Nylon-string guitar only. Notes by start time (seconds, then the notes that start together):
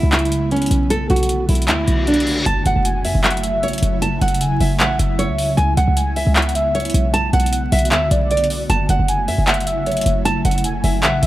Already playing: E4
0.13 E4
0.52 C#4
0.90 A4
1.10 F#4
1.49 E4
1.69 E4
2.08 D4
2.46 A5
2.66 F#5
3.05 E5
3.24 E5
3.63 C#5
4.02 A5
4.22 F#5
4.61 E5
4.81 E5
5.19 C#5
5.57 G#5
5.77 F#5
6.16 E5
6.36 E5
6.75 C#5
7.14 A5
7.33 F#5
7.72 E5
7.92 E5
8.31 D5
8.70 A5
8.90 F#5
9.28 E5
9.47 E5
9.87 C#5
10.25 A5
10.45 F#5
10.84 E5
11.04 E5